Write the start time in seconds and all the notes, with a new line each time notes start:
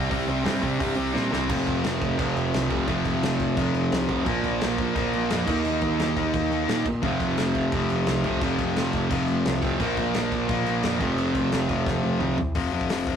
Already playing: C4
0.11 C2 C3 G3 C4, kick, open hi-hat
0.28 C2 C3 G3 C4
0.45 G2 C3 G3 C4, snare, open hi-hat
0.62 C3 G3 C4, kick
0.79 G2 C3 G3 C4, kick, open hi-hat
0.96 C2 C3 G3 C4
1.13 A#2 C3 G3 C4, snare
1.31 C2 C3 G3 C4, snare
1.47 F1 F2 C3 F3, kick, crash
1.67 F1, kick, crash
1.84 F1, snare, crash
2.02 F1, kick, crash
2.17 F1 F2 C3 F3, kick, crash
2.36 F1, crash
2.54 C2, snare, crash
2.69 C2 F2 C3 F3, kick, crash
2.86 F1 F2 C3 F3, kick, crash
3.05 F1, kick, crash
3.23 F1, snare, crash
3.40 F1, kick, crash
3.56 F1 F2 C3 F3, kick, crash
3.74 F1, crash
3.91 C2, snare, crash
4.09 C2 F2 C3 F3, kick, crash
4.25 A#1 A#2 F3 A#3, kick, crash
4.44 A#1, kick, crash
4.61 A#1, snare, crash
4.78 A#1, kick, crash
4.94 A#1 A#2 F3 A#3, kick, crash
5.13 A#1, crash
5.30 F2, snare, crash
5.47 D#2 D#3 A#3 D#4, kick, crash
5.65 D#2, crash
5.81 D#2, kick, crash
5.99 D#2, snare, crash
6.16 D#2 D#3 A#3 D#4, kick, crash
6.34 D#2, kick, crash
6.51 D#2, crash
6.68 A#2 D#3 A#3 D#4, snare, crash
6.86 A#2, kick, crash
7.02 F1 F2 C3 F3, kick, crash
7.20 F1, kick, crash
7.37 F1, snare, crash
7.55 F1, kick, crash
7.72 F1 F2 C3 F3, kick, crash
7.90 F1, crash
8.06 C2, snare, crash
8.24 C2 F2 C3 F3, kick, crash
8.41 F1 F2 C3 F3, kick, crash
8.59 F1, kick, crash
8.76 F1, snare, crash
8.93 F1, kick, crash
9.10 F1 F2 C3 F3, kick, crash
9.28 F1, crash
9.45 C2, snare, crash
9.61 C2 F2 C3 F3, kick, crash
9.79 A#1 A#2 F3 A#3, kick, crash
9.97 A#1, kick, crash
10.14 A#1, snare, crash
10.32 A#1, kick, crash
10.48 A#1 A#2 F3 A#3, kick, crash
10.66 A#1, crash
10.83 F2, snare, crash
10.99 F1 F2 C3 F3, kick, crash
11.17 F1, crash
11.35 F1, kick, crash
11.52 F1, snare, crash
11.68 F1 F2 C3 F3, kick, crash
11.86 F1, kick, snare
12.04 F1, high tom
12.20 C2 F2 C3 F3, mid tom
12.37 C2, floor tom
12.55 F1 F2 C3 F3, kick, open hi-hat
12.72 F2 C3 F3
12.81 kick
12.89 F1 F2 C3 F3, snare, open hi-hat
13.07 F1 F2 C3 F3, kick